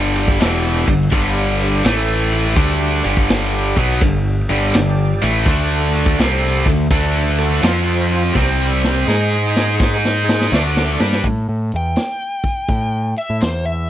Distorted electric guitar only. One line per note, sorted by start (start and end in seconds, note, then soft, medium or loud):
0.00 0.39 G2 medium
0.00 0.40 D3 medium
0.00 0.40 G3 medium
0.40 0.86 E2 medium
0.40 0.87 B2 medium
0.40 0.87 E3 medium
0.87 1.08 G2 medium
0.87 1.08 D3 medium
1.11 1.84 G2 loud
1.11 1.84 D3 medium
1.11 1.85 G3 medium
1.85 2.56 A2 medium
1.85 2.56 E3 medium
1.85 2.56 A3 medium
2.56 3.03 D3 medium
2.56 3.03 A3 loud
2.56 3.04 D4 medium
3.04 3.75 G2 medium
3.04 3.76 D3 loud
3.04 3.76 G3 medium
3.77 4.01 B2 medium
3.77 4.02 F#3 loud
3.77 4.02 B3 loud
4.03 4.40 G2 medium
4.03 4.41 D3 medium
4.50 4.74 G2 medium
4.50 4.74 D3 loud
4.50 4.74 G3 medium
4.75 5.13 G2 medium
4.75 5.13 D3 medium
5.22 5.46 A2 medium
5.22 5.46 E3 medium
5.22 5.46 A3 loud
5.48 6.19 D3 medium
5.48 6.19 A3 loud
5.48 6.19 D4 loud
6.19 6.65 C3 medium
6.19 6.65 G3 loud
6.19 6.66 C4 loud
6.67 6.86 D3 medium
6.67 6.87 A3 medium
6.91 7.62 D3 medium
6.91 7.63 A3 medium
6.91 7.63 D4 loud
7.63 8.35 F3 medium
7.63 8.35 C4 loud
7.63 8.35 F4 loud
8.36 9.07 C3 medium
8.36 9.07 G3 medium
8.36 9.08 C4 medium
9.08 10.51 G#3 medium
9.08 10.52 D#4 medium
9.08 10.52 G#4 medium
10.53 10.98 D3 medium
10.53 10.99 A3 medium
10.53 10.99 D4 loud
11.00 11.24 G3 medium
11.00 11.24 D4 medium
11.00 11.24 G4 loud